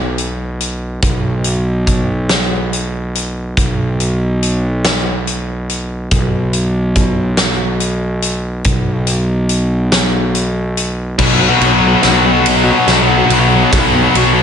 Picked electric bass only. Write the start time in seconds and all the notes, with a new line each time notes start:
Already playing: B1
1.02 B1
3.57 B1
6.12 B1
8.65 B1
11.18 B1
11.60 B1
12.03 B1
12.87 B1
13.29 B1
13.73 B1
14.15 B1